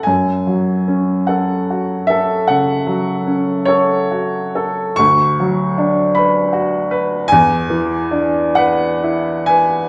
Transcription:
\new Staff \with { instrumentName = "Upright piano" } { \time 12/8 \key fis \minor \tempo 4. = 49 << { gis''4. fis''4 e''8 fis''4. cis''4. | cis'''4. b''4. gis''4. fis''4 gis''8 | } \\ { fis,8 fis8 cis'8 a'8 fis'8 a'8 cis8 fis8 cis'8 a'8 fis'8 a'8 | d,8 fis8 d'8 b'8 fis'8 b'8 e,8 e8 d'8 b'8 e'8 b'8 | } >> }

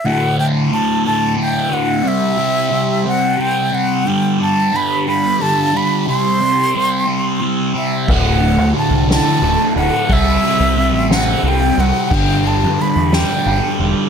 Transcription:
<<
  \new Staff \with { instrumentName = "Flute" } { \time 6/8 \key d \mixolydian \tempo 4. = 60 fis''8 g''8 a''8 a''8 g''8 fis''8 | e''4. fis''8 g''8 fis''8 | g''8 a''8 b''8 b''8 a''8 b''8 | c'''2 r8 e''8 |
fis''4 a''8 a''4 fis''8 | e''4. fis''8 g''8 fis''8 | g''8 a''8 b''8 g''4 r8 | }
  \new Staff \with { instrumentName = "Distorted electric guitar" } { \clef bass \time 6/8 \key d \mixolydian <d, a, d>8 <a, d>8 <d, a, d>8 <a, d>8 <d, a, d>8 <a, d>8 | <c g c'>8 <g c'>8 <c g c'>8 <g c'>8 <c g c'>8 <g c'>8 | <g, d g>8 <d g>8 <g, d g>8 <d g>8 <g, d g>8 <d g>8 | <c g c'>8 <g c'>8 <c g c'>8 <g c'>8 <c g c'>8 <g c'>8 |
<d, a, d>8 <a, d>8 <d, a, d>8 <a, d>8 <d, a, d>8 <a, d>8 | <c g c'>8 <g c'>8 <c g c'>8 <g c'>8 <c g c'>8 <g c'>8 | <g, d g>8 <d g>8 <g, d g>8 <d g>8 <g, d g>8 <d g>8 | }
  \new Staff \with { instrumentName = "Picked electric bass" } { \clef bass \time 6/8 \key d \mixolydian r2. | r2. | r2. | r2. |
d,,8. d,16 r16 c,8 r16 d,,16 r16 d,,16 r16 | c,8 r16 c,8 a,,8. c,8 c,16 r16 | g,,8. g,16 r16 e,8 r16 g,,16 r16 e,,16 r16 | }
  \new DrumStaff \with { instrumentName = "Drums" } \drummode { \time 6/8 r4. r4. | r4. r4. | r4. r4. | r4. r4. |
<cymc bd>8 cymr8 cymr8 <cymr sn>8 cymr8 cymr8 | <bd cymr>8 cymr8 cymr8 <cymr sn>8 cymr8 cymr8 | <cymc bd>8 cymr8 cymr8 <cymr sn>8 cymr8 cymr8 | }
>>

